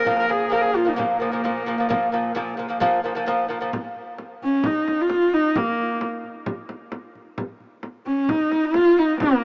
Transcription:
0.00 0.18 A#4 medium
0.05 0.24 A#2 medium
0.05 3.76 A#2 medium
0.05 0.25 F3 medium
0.05 frame drum medium
0.19 0.32 A#4 medium
0.29 0.47 A#2 medium
0.29 0.48 F3 medium
0.29 0.55 G#4 medium
0.29 frame drum soft
0.50 0.69 A#2 medium
0.50 0.70 F3 medium
0.50 0.63 A#4 medium
0.50 frame drum soft
0.62 0.78 G#4 medium
0.74 0.84 A#2 medium
0.74 0.84 F3 medium
0.74 0.90 F4 medium
0.74 frame drum soft
0.85 0.95 A#2 medium
0.85 0.95 F3 medium
0.85 0.98 D#4 medium
0.96 1.15 A#2 loud
0.96 1.16 F3 loud
0.96 2.73 A#3 medium
0.96 frame drum medium
1.20 1.29 A#2 medium
1.20 1.30 F3 medium
1.20 frame drum soft
1.32 1.41 A#2 medium
1.32 1.42 F3 medium
1.44 1.62 A#2 medium
1.44 1.63 F3 medium
1.44 frame drum medium
1.66 1.75 A#2 medium
1.66 1.76 F3 medium
1.66 frame drum soft
1.78 1.87 A#2 medium
1.78 1.88 F3 medium
1.89 2.07 A#2 medium
1.89 2.08 F3 loud
1.89 frame drum medium
2.12 2.30 A#2 medium
2.12 2.31 F3 medium
2.35 2.53 A#2 loud
2.35 2.54 F3 loud
2.35 frame drum medium
2.57 2.67 A#2 medium
2.57 2.68 F3 medium
2.57 frame drum soft
2.69 2.78 A#2 medium
2.69 2.79 F3 medium
2.80 2.99 A#2 loud
2.80 2.99 F3 loud
2.80 frame drum medium
3.04 3.13 A#2 medium
3.04 3.14 F3 medium
3.04 frame drum soft
3.15 3.24 A#2 medium
3.15 3.25 F3 medium
3.26 3.45 A#2 medium
3.26 3.45 F3 loud
3.26 frame drum medium
3.49 3.58 A#2 medium
3.49 3.59 F3 medium
3.49 frame drum soft
3.61 3.70 A#2 medium
3.61 3.70 F3 medium
3.73 frame drum medium
3.96 frame drum soft
4.18 frame drum soft
4.42 4.67 C#4 medium
4.42 frame drum soft
4.64 5.02 D#4 medium
4.64 frame drum medium
4.88 frame drum medium
5.01 5.35 F4 medium
5.10 frame drum medium
5.33 5.59 D#4 loud
5.33 frame drum soft
5.56 6.02 A#3 medium
5.56 frame drum medium
5.79 frame drum soft
6.01 frame drum medium
6.24 frame drum soft
6.46 frame drum medium
6.69 frame drum medium
6.92 frame drum medium
7.15 frame drum soft
7.38 frame drum medium
7.60 frame drum soft
7.83 frame drum medium
8.06 8.31 C#4 medium
8.06 frame drum soft
8.29 8.66 D#4 medium
8.29 frame drum medium
8.51 frame drum soft
8.65 9.00 F4 loud
8.74 frame drum medium
8.97 9.21 D#4 loud
8.97 frame drum soft
9.20 9.44 A#3 medium
9.20 frame drum medium

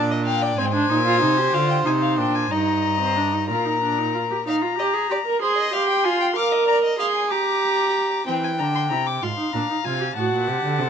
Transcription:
0.00 0.57 A#2 medium
0.00 0.58 D4 medium
0.00 0.12 D5 medium
0.11 0.25 D#5 medium
0.26 0.44 F5 medium
0.26 0.57 G5 medium
0.42 0.59 D5 medium
0.58 0.90 G#2 medium
0.58 0.65 C4 medium
0.58 2.53 C5 medium
0.58 0.67 G#5 medium
0.66 0.73 G5 medium
0.72 0.89 D4 medium
0.72 1.55 G#5 medium
0.90 1.24 A#2 medium
0.90 0.97 D#4 medium
1.06 1.20 F4 loud
1.21 1.53 C3 medium
1.21 1.39 D#4 medium
1.37 1.55 G4 medium
1.53 1.86 D3 medium
1.53 1.87 F4 loud
1.53 1.70 F5 medium
1.70 1.77 G5 medium
1.85 2.20 C3 medium
1.85 2.20 D#4 medium
1.85 1.93 G#5 medium
2.02 2.18 F5 medium
2.18 2.51 A#2 medium
2.18 2.50 D4 medium
2.18 2.36 G5 medium
2.35 2.53 G#5 medium
2.51 3.51 G2 medium
2.51 2.99 D#4 medium
2.51 3.49 D#5 medium
2.51 3.48 A#5 medium
3.00 3.18 C4 medium
3.17 3.34 D4 medium
3.33 3.48 D#4 medium
3.49 4.47 A#2 medium
3.49 3.66 F4 medium
3.49 4.45 A#4 medium
3.49 4.45 A#5 medium
3.65 3.81 D#4 medium
3.81 4.00 D4 medium
3.98 4.14 D#4 medium
4.14 4.21 F4 medium
4.30 4.37 G4 medium
4.46 4.63 D#4 medium
4.46 4.55 F5 medium
4.46 5.38 A#5 medium
4.62 4.77 F4 medium
4.78 4.95 G4 medium
4.78 4.87 D#5 medium
4.94 5.09 G#4 medium
5.10 5.16 G4 medium
5.10 5.19 D5 medium
5.26 5.41 A#4 medium
5.42 5.72 G#4 medium
5.42 5.58 C5 medium
5.42 6.38 C6 medium
5.58 5.75 D#5 medium
5.73 6.06 G4 medium
5.73 5.88 F5 medium
5.89 6.06 G5 medium
6.04 6.35 F4 loud
6.04 6.20 G#5 medium
6.21 6.27 G5 medium
6.36 6.97 A#4 loud
6.36 6.53 F5 medium
6.36 6.67 D6 medium
6.52 6.67 D#5 medium
6.68 6.83 D5 medium
6.68 6.76 A#5 medium
6.84 6.99 D#5 medium
6.98 7.31 G#4 loud
6.98 7.06 F5 medium
6.98 7.30 C6 medium
7.16 7.33 G#5 medium
7.30 8.26 G4 medium
7.30 8.26 A#5 medium
7.30 8.25 D6 medium
8.27 8.61 E3 medium
8.27 8.57 C4 medium
8.27 9.24 G5 medium
8.27 8.34 G5 medium
8.44 8.50 G#5 medium
8.59 8.93 D3 medium
8.59 8.90 D4 medium
8.59 8.65 A#5 medium
8.75 8.81 C6 medium
8.90 9.22 C3 medium
8.90 8.99 E4 medium
8.90 9.08 A#5 medium
9.06 9.24 D6 medium
9.22 9.31 G#2 medium
9.22 9.29 F4 medium
9.22 10.16 F5 medium
9.22 9.55 C6 medium
9.38 9.53 D#4 medium
9.53 9.62 A#2 medium
9.53 9.69 D4 medium
9.53 9.86 A#5 medium
9.70 9.76 D#4 medium
9.85 10.16 C3 medium
9.85 10.00 F4 medium
9.85 10.15 G#5 medium
10.01 10.07 G4 medium
10.16 10.32 A2 medium
10.16 10.49 F#4 medium
10.16 10.89 F#5 medium
10.16 10.89 A5 medium
10.32 10.49 A#2 medium
10.48 10.63 C3 medium
10.48 10.81 G4 medium
10.63 10.80 D3 medium
10.79 10.89 C3 medium
10.79 10.89 A4 medium

